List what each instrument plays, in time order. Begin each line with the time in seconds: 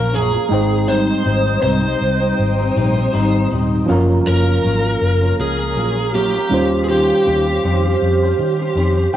Already playing: fingered electric bass A#1, reed electric piano F#3 C#4 F4 A#4, clean electric guitar A#3 C#4, electric slide guitar A#4, analog synth pad A#4 F5 A#5
0.00 clean electric guitar F3
0.12 clean electric guitar F#2 F3 A#3 C#4, electric slide guitar G#4
0.33 clean electric guitar F3 A#3 C#4
0.49 fingered electric bass G#1, clean electric guitar G#2 C4 D#4, reed electric piano G#3 D#4 G5, analog synth pad C5 D#5 G5 D#6
0.54 reed electric piano C5
0.87 clean electric guitar G#2 G3 C4 D#4, electric slide guitar C5
1.23 fingered electric bass G#1, clean electric guitar G#2 G3 C4 D#4
1.44 clean electric guitar G3 C4 D#4
1.61 fingered electric bass C2, clean electric guitar G#2 G3 C4 D#4, electric slide guitar C5
1.82 clean electric guitar G3 C4 D#4
2.01 fingered electric bass C2
2.20 clean electric guitar G3 C4 D#4
2.39 fingered electric bass G#1
2.58 clean electric guitar G3 C4 D#4
2.75 fingered electric bass A#1, clean electric guitar G#2 G3 C4 D#4
2.96 clean electric guitar G3 C4 D#4
3.13 fingered electric bass G#1, clean electric guitar G#2 G3 C4 D#4
3.51 fingered electric bass D#1, clean electric guitar G#2 G3 C4 D#4
3.86 fingered electric bass F#1, reed electric piano F3 C#4 F4, clean electric guitar F#3 A#3 C#4 F4, analog synth pad A#4 F5 A#5
3.92 reed electric piano A#4
4.25 fingered electric bass F#1, clean electric guitar F#3 A#3 C#4 F4, electric slide guitar A#4
4.46 clean electric guitar A#3 C#4 F4
4.63 fingered electric bass G#1, clean electric guitar F#3 A#3 C#4 F4
4.83 clean electric guitar A#3 C#4 F4
5.01 fingered electric bass F#1
5.21 clean electric guitar A#3 C#4 F4
5.39 fingered electric bass C#2, electric slide guitar G#4
5.58 clean electric guitar A#3 C#4 F4
5.76 fingered electric bass A#1, clean electric guitar F#3 A#3 C#4 F4
5.96 clean electric guitar A#3 C#4 F4
6.14 clean electric guitar F#3 A#3 C#4 F4, electric slide guitar G4
6.35 clean electric guitar A#3 C#4 F4
6.49 fingered electric bass D#2, clean electric guitar D#3 C#4 G4, reed electric piano G3 C#4 F4, analog synth pad C5 G5
6.54 clean electric guitar C5, reed electric piano C5
6.84 electric slide guitar G#4
6.89 clean electric guitar D#3 C#4 G4 C5, electric slide guitar G4
7.25 fingered electric bass D#2, clean electric guitar D#3 C#4 G4 C5
7.46 clean electric guitar C#4 G4 C5
7.64 fingered electric bass F2, clean electric guitar D#3 C#4 G4 C5
7.84 clean electric guitar C#4 G4 C5
8.02 fingered electric bass F2
8.22 clean electric guitar C#4 G4 C5
8.39 fingered electric bass D#3
8.59 clean electric guitar C#4 G4 C5
8.75 fingered electric bass F2, clean electric guitar D#3 C#4 G4 C5
8.96 clean electric guitar C#4 G4 C5
9.13 clean electric guitar D#3